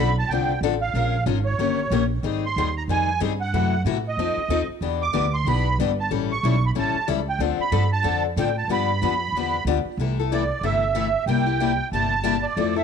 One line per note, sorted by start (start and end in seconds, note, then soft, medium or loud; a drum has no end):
0.00 0.28 B1 medium
0.00 0.16 B5 loud
0.19 0.31 A5 loud
0.29 0.60 C2 medium
0.29 0.51 D3 medium
0.29 0.51 F3 medium
0.29 0.51 C4 medium
0.29 0.51 A4 medium
0.29 0.60 G5 medium
0.33 0.51 D4 medium
0.61 0.93 A1 medium
0.61 0.74 D3 medium
0.61 0.74 F3 medium
0.61 0.74 C4 medium
0.61 0.74 D4 medium
0.61 0.74 A4 loud
0.81 1.24 F5 medium
0.94 1.25 A#1 medium
0.94 1.15 F3 medium
0.94 1.15 G#3 medium
0.94 1.15 C#4 medium
0.94 1.15 F4 medium
0.94 1.16 A#4 medium
1.26 1.58 G#1 medium
1.26 1.37 F3 medium
1.26 1.38 G#3 medium
1.26 1.37 C#4 medium
1.26 1.38 F4 medium
1.26 1.38 A#4 medium
1.45 2.06 C#5 medium
1.58 1.90 G1 medium
1.58 1.79 D#3 medium
1.58 1.79 A#3 medium
1.58 1.80 C#4 medium
1.58 1.80 G4 medium
1.58 1.80 A#4 medium
1.90 2.22 A#1 medium
1.90 2.02 D#3 medium
1.90 2.03 A#3 medium
1.90 2.03 C#4 medium
1.90 2.03 G4 medium
1.90 2.03 A#4 medium
2.23 2.55 G#1 medium
2.23 2.44 D#3 medium
2.23 2.44 G3 medium
2.23 2.44 C4 medium
2.23 2.44 D#4 medium
2.23 2.44 G#4 medium
2.46 2.75 C6 loud
2.56 2.87 D#2 medium
2.56 2.68 D#3 medium
2.56 2.68 G3 medium
2.56 2.68 C4 medium
2.56 2.68 D#4 medium
2.56 2.68 G#4 medium
2.77 2.83 A#5 medium
2.88 3.19 F2 medium
2.88 3.09 D#3 medium
2.88 3.09 G3 medium
2.88 3.09 C4 medium
2.88 3.09 D#4 medium
2.88 3.10 G#4 medium
2.88 3.20 G#5 loud
3.20 3.52 G2 medium
3.20 3.31 D#3 medium
3.20 3.32 G3 medium
3.20 3.32 C4 medium
3.20 3.32 D#4 medium
3.20 3.32 G#4 medium
3.41 3.83 F#5 medium
3.53 3.84 F#2 medium
3.53 3.73 C3 medium
3.53 3.74 E3 medium
3.53 3.73 A3 medium
3.53 3.74 E4 medium
3.53 3.73 F#4 medium
3.85 4.16 A2 loud
3.85 3.96 C3 medium
3.85 3.97 E3 medium
3.85 3.97 A3 medium
3.85 3.97 E4 medium
3.85 3.97 F#4 medium
4.09 4.67 D#5 medium
4.17 4.35 F2 medium
4.17 4.38 F3 medium
4.17 4.38 C4 medium
4.17 4.39 D#4 medium
4.17 4.39 A4 medium
4.37 muted upright bass stroke soft
4.48 4.67 D#2 medium
4.48 4.61 F3 medium
4.48 4.61 C4 medium
4.48 4.61 D#4 medium
4.48 4.61 A4 loud
4.68 muted upright bass stroke soft
4.81 5.13 E2 medium
4.81 5.02 E3 medium
4.81 5.02 B3 medium
4.81 5.02 D4 medium
4.81 5.02 G4 medium
5.02 5.35 D6 medium
5.13 5.44 D2 medium
5.13 5.25 E3 medium
5.13 5.25 B3 medium
5.13 5.25 D4 medium
5.13 5.25 G4 medium
5.34 5.47 C6 medium
5.45 5.77 B1 medium
5.45 5.67 E3 medium
5.45 5.67 B3 medium
5.45 5.67 D4 medium
5.45 5.67 G4 medium
5.45 5.78 B5 loud
5.78 6.10 G1 medium
5.78 5.90 E3 medium
5.78 5.90 B3 medium
5.78 5.91 D4 medium
5.78 5.91 G4 loud
6.00 6.11 A5 medium
6.11 6.43 A1 medium
6.11 6.31 E3 medium
6.11 6.31 G3 medium
6.11 6.31 C#4 medium
6.11 6.31 E4 medium
6.11 6.31 A4 medium
6.32 6.65 C#6 medium
6.43 6.75 B1 loud
6.43 6.55 E3 medium
6.43 6.55 G3 medium
6.43 6.55 C#4 medium
6.43 6.55 E4 medium
6.43 6.55 A4 medium
6.66 6.71 B5 medium
6.75 6.93 A1 medium
6.75 6.96 E3 medium
6.75 6.96 G3 medium
6.75 6.96 C#4 medium
6.75 6.96 E4 medium
6.75 6.96 A4 medium
6.79 7.08 A5 medium
6.94 muted upright bass stroke soft
7.08 7.38 C#2 medium
7.08 7.19 E3 medium
7.08 7.19 G3 medium
7.08 7.19 C#4 medium
7.08 7.19 E4 loud
7.08 7.19 A4 loud
7.29 7.41 G5 medium
7.39 7.57 D2 medium
7.39 7.61 D3 medium
7.39 7.60 F3 medium
7.39 7.61 C4 medium
7.39 7.61 D4 medium
7.39 7.61 A4 medium
7.58 7.90 B5 medium
7.58 muted upright bass stroke soft
7.72 8.04 G2 loud
7.72 7.83 D3 medium
7.72 7.83 F3 medium
7.72 7.83 C4 medium
7.72 7.83 D4 medium
7.72 7.83 A4 medium
7.93 8.23 A5 medium
8.03 8.36 F2 medium
8.03 8.24 D3 medium
8.03 8.25 F3 medium
8.03 8.25 C4 medium
8.03 8.25 D4 medium
8.03 8.25 A4 medium
8.36 8.67 A2 loud
8.36 8.48 D3 medium
8.36 8.48 F3 medium
8.36 8.48 C4 medium
8.36 8.49 D4 loud
8.36 8.49 A4 medium
8.36 8.56 G5 medium
8.58 8.69 A5 medium
8.68 9.00 G2 medium
8.68 8.90 D3 medium
8.68 8.90 F3 medium
8.68 8.90 B3 medium
8.68 8.90 D4 medium
8.68 8.90 G4 medium
8.72 9.64 B5 medium
9.02 9.32 F2 loud
9.02 9.13 D3 medium
9.02 9.13 F3 medium
9.02 9.13 B3 medium
9.02 9.13 D4 medium
9.02 9.13 G4 medium
9.32 9.64 E2 medium
9.36 9.55 D3 medium
9.36 9.56 F3 medium
9.36 9.55 B3 medium
9.36 9.56 D4 medium
9.36 9.56 G4 medium
9.65 9.83 D2 medium
9.65 9.78 D3 medium
9.65 9.78 F3 medium
9.65 9.78 B3 medium
9.65 9.78 D4 loud
9.65 9.78 G4 medium
9.85 muted upright bass stroke soft
9.97 10.50 C2 medium
9.97 10.18 C3 medium
9.97 10.18 E3 medium
9.97 10.18 A3 medium
9.97 10.18 E4 medium
9.97 10.18 A4 medium
10.19 10.31 A3 medium
10.19 10.31 E4 medium
10.19 10.31 A4 medium
10.32 10.42 C3 medium
10.32 10.43 E3 medium
10.32 10.43 A3 medium
10.32 10.43 E4 medium
10.32 10.43 A4 medium
10.32 10.65 D5 medium
10.61 11.14 G1 medium
10.61 10.83 C3 medium
10.61 10.83 E3 medium
10.61 10.83 A3 medium
10.61 10.84 E4 medium
10.61 10.84 A4 medium
10.61 11.25 E5 medium
10.95 11.06 C3 medium
10.95 11.06 E3 medium
10.95 11.06 A3 medium
10.95 11.06 E4 medium
10.95 11.07 A4 medium
11.26 11.79 C2 medium
11.26 11.46 C3 medium
11.26 11.47 G3 medium
11.26 11.46 A#3 medium
11.26 11.45 E4 medium
11.26 11.45 G4 medium
11.26 11.88 G5 loud
11.46 11.59 A#3 soft
11.46 11.60 E4 medium
11.46 11.60 G4 medium
11.60 11.71 C3 medium
11.60 11.71 G3 medium
11.60 11.71 A#3 medium
11.60 11.71 E4 medium
11.60 11.72 G4 medium
11.92 12.44 G1 medium
11.92 12.13 C3 medium
11.92 12.13 G3 medium
11.92 12.13 A#3 medium
11.92 12.13 E4 medium
11.92 12.14 G4 medium
11.92 12.46 A5 loud
12.24 12.35 C3 medium
12.24 12.35 G3 loud
12.24 12.35 A#3 medium
12.24 12.36 E4 medium
12.24 12.36 G4 loud
12.43 12.77 D5 medium
12.56 12.83 F2 medium
12.56 12.75 F3 medium
12.56 12.76 A3 medium
12.56 12.76 C4 medium
12.56 12.75 E4 medium
12.56 12.75 A4 medium
12.76 12.84 C4 medium
12.76 12.84 E4 soft
12.76 12.84 A4 medium
12.76 12.82 E5 medium